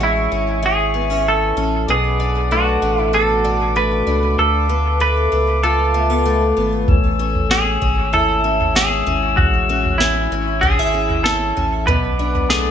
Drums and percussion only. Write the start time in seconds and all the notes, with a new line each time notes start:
6.88 kick, floor tom
7.35 floor tom
7.51 snare
7.82 kick
8.14 floor tom
8.61 floor tom
8.76 snare
9.08 floor tom
9.38 kick, floor tom
9.85 floor tom
10.00 snare
10.63 kick, floor tom
11.10 floor tom
11.26 snare
11.57 floor tom
11.88 kick, floor tom
12.35 floor tom
12.50 snare